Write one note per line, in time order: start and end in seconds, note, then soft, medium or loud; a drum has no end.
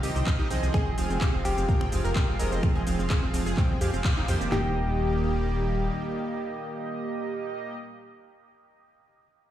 0.00 0.11 C2 loud
0.00 4.48 C3 medium
0.00 0.36 C3 medium
0.00 0.70 D#3 medium
0.00 4.48 F3 medium
0.00 0.36 C4 medium
0.00 0.70 D#4 medium
0.00 0.12 G4 medium
0.00 0.36 G4 medium
0.00 0.36 D#5 medium
0.00 open hi-hat loud
0.00 shaker medium
0.16 0.23 C2 medium
0.16 0.23 C4 medium
0.16 shaker soft
0.27 0.35 C4 medium
0.27 kick loud
0.27 clap loud
0.27 shaker soft
0.39 0.47 C2 medium
0.39 0.48 C3 medium
0.39 0.48 C4 medium
0.39 0.47 D#4 medium
0.39 0.48 G4 medium
0.39 0.48 D#5 loud
0.50 0.59 C2 loud
0.50 0.95 F3 medium
0.50 0.59 C4 medium
0.50 0.95 C4 medium
0.50 0.95 G#4 medium
0.50 0.95 D#5 loud
0.50 open hi-hat loud
0.50 shaker medium
0.63 0.70 C2 medium
0.63 0.70 C4 medium
0.63 shaker soft
0.74 4.48 G#3 medium
0.74 4.48 F4 medium
0.74 0.83 G#4 loud
0.74 1.36 G#4 loud
0.74 finger snap medium
0.74 kick loud
0.74 shaker soft
0.86 0.94 F1 medium
0.86 0.94 C4 medium
0.98 1.06 F1 loud
0.98 1.31 F3 medium
0.98 1.06 C4 medium
0.98 1.31 C4 medium
0.98 1.31 G#4 medium
0.98 1.31 F5 medium
0.98 open hi-hat loud
0.98 shaker medium
1.10 1.17 F1 medium
1.10 1.18 C4 medium
1.10 shaker soft
1.21 1.30 G4 medium
1.21 finger snap medium
1.21 kick loud
1.21 clap loud
1.21 shaker soft
1.34 1.41 F1 medium
1.34 1.66 F3 medium
1.34 1.41 C4 medium
1.34 1.66 C4 medium
1.34 1.66 G#4 medium
1.34 1.66 F5 medium
1.45 1.53 F1 loud
1.45 1.53 C4 medium
1.45 1.88 G4 medium
1.45 open hi-hat loud
1.45 shaker medium
1.57 1.65 F1 medium
1.57 1.65 C4 medium
1.57 shaker soft
1.68 1.90 F3 medium
1.68 1.90 C4 medium
1.68 1.90 G#4 medium
1.68 1.77 A#4 loud
1.68 1.90 G5 loud
1.68 kick loud
1.68 shaker soft
1.81 1.88 F1 medium
1.81 1.89 C4 medium
1.81 finger snap medium
1.92 2.00 F1 loud
1.92 2.25 F3 medium
1.92 2.01 C4 medium
1.92 2.25 C4 medium
1.92 2.25 G#4 medium
1.92 2.25 F5 medium
1.92 open hi-hat loud
1.92 shaker medium
2.04 2.12 F1 medium
2.04 2.12 A#4 loud
2.04 shaker soft
2.16 2.24 C4 medium
2.16 kick loud
2.16 clap loud
2.16 shaker soft
2.28 2.35 F1 medium
2.28 2.37 F3 medium
2.28 2.36 C4 medium
2.28 2.37 C4 medium
2.28 2.37 G#4 medium
2.28 2.37 F5 loud
2.39 2.47 F1 loud
2.39 2.84 F3 medium
2.39 2.84 C4 medium
2.39 2.84 G#4 medium
2.39 2.48 A#4 medium
2.39 2.84 D#5 loud
2.39 open hi-hat loud
2.39 shaker medium
2.52 2.59 F1 loud
2.52 2.59 C4 medium
2.52 shaker soft
2.63 2.71 C4 medium
2.63 finger snap medium
2.63 kick loud
2.63 shaker soft
2.75 2.83 F1 medium
2.75 2.83 G#4 loud
2.87 2.95 F1 loud
2.87 3.20 F3 medium
2.87 2.95 C4 medium
2.87 3.20 C4 medium
2.87 3.20 G#4 medium
2.87 3.20 F5 medium
2.87 open hi-hat loud
2.87 shaker medium
2.99 3.06 F1 medium
2.99 3.07 C4 medium
2.99 shaker soft
3.10 3.19 G#4 loud
3.10 finger snap medium
3.10 kick loud
3.10 clap loud
3.10 shaker soft
3.23 3.30 F1 medium
3.23 3.55 F3 medium
3.23 3.30 C4 medium
3.23 3.55 C4 medium
3.23 3.55 G#4 medium
3.23 3.55 F5 medium
3.34 3.42 F1 loud
3.34 3.42 C4 medium
3.34 open hi-hat loud
3.34 shaker medium
3.46 3.54 F1 medium
3.46 3.54 G#4 loud
3.46 shaker soft
3.57 3.79 F3 medium
3.57 3.66 C4 medium
3.57 3.79 C4 medium
3.57 3.79 G#4 medium
3.57 3.79 G5 medium
3.57 kick loud
3.57 clap medium
3.57 shaker soft
3.70 3.77 G1 medium
3.70 3.78 C4 medium
3.81 3.89 F2 loud
3.81 4.14 F3 medium
3.81 4.14 C4 medium
3.81 3.90 G4 loud
3.81 4.14 G#4 medium
3.81 4.14 F5 medium
3.81 open hi-hat loud
3.81 shaker medium
3.94 4.01 F1 medium
3.94 4.01 C4 medium
3.94 shaker soft
4.04 4.13 C4 medium
4.04 kick loud
4.04 clap loud
4.04 shaker soft
4.17 4.24 F1 medium
4.17 4.26 F3 medium
4.17 4.26 C4 medium
4.17 4.25 D#4 medium
4.17 4.26 G#4 medium
4.17 4.26 F5 medium
4.28 4.36 F2 loud
4.28 4.73 D#3 medium
4.28 4.51 A#3 medium
4.28 4.37 C4 medium
4.28 4.51 G4 medium
4.28 4.73 C5 loud
4.28 open hi-hat loud
4.28 shaker medium
4.41 4.48 F1 loud
4.41 4.48 C4 medium
4.41 shaker soft
4.52 5.90 D#1 loud
4.52 7.77 D#3 medium
4.52 7.76 G3 medium
4.52 7.76 A#3 medium
4.52 7.77 A#3 medium
4.52 7.76 D#4 medium
4.52 7.76 G4 medium
4.52 7.76 D#5 medium
4.52 snare loud
4.52 clap medium
4.52 floor tom loud